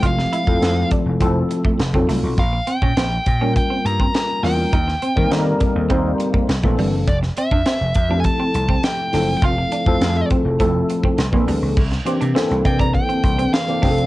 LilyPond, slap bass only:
\new Staff \with { instrumentName = "Slap bass" } { \clef bass \time 4/4 \key f \major \tempo 4 = 102 f,,8 r16 f,16 f,8 r16 f,,16 f,,8 r8 f,,16 f,,16 c,16 b,,16 | bes,,8 r16 bes,16 bes,,8 bes,8. r16 g,8 r8 e,8 | ees,8 r16 ees16 ees8 r16 ees,16 ees,8 r8 c,16 bes,,16 g,,16 ges,,16 | f,,8 r16 f,16 r16 f,,16 f,8. r16 c,8 r8 ges,,8 |
f,,8 r16 f,16 f,8 r16 f,,16 f,,8 r8 c,16 bes,,16 d,16 des,16 | c,8 r16 c16 r16 c,16 c8. r16 c,8 r8 f,,8 | }